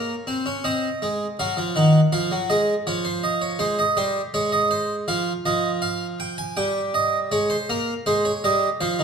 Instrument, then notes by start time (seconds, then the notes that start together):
harpsichord
Already playing: A#3 C#5
0.27 C4
0.46 C#4
0.64 C4 D#5
1.02 G#3
1.39 F#3 F5
1.57 F3
1.76 D#3 F#5
2.12 F3 F5
2.32 F#3
2.50 G#3 D#5
2.87 F3 C#5
3.05 C5
3.24 D#5
3.42 C#5
3.59 G#3 C5
3.79 D#5
3.97 G3 C5
4.34 G#3 C#5
4.52 D#5
4.71 C5
5.08 F3 F5
5.46 F3 D#5
5.82 F5
6.20 G5
6.38 G#5
6.57 G3 G5
6.94 D#5
7.31 G#3 C#5
7.50 C5
7.70 A#3 A#4
8.06 G#3 C5
8.25 C#5
8.44 G3 D#5
8.81 F3 C5
8.99 D#3